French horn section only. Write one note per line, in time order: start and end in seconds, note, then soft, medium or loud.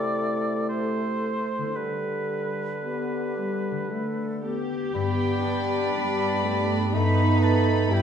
0.00 1.72 A3 medium
0.00 1.72 E4 soft
1.76 2.69 G3 soft
1.76 2.69 G4 soft
2.84 3.34 B3 soft
3.38 3.90 G3 soft
3.90 4.43 A3 soft
4.43 4.94 B3 soft
4.95 8.02 B3 medium
4.95 6.90 G4 medium
6.95 7.91 A4 medium
7.92 8.02 G4 soft